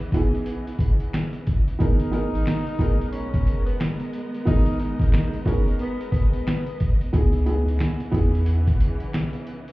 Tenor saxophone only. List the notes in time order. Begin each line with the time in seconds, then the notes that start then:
1.81 D#4
3.12 C#4
3.66 B3
4.47 D#4
4.80 D#4
5.44 C#4
5.81 B3
6.12 B3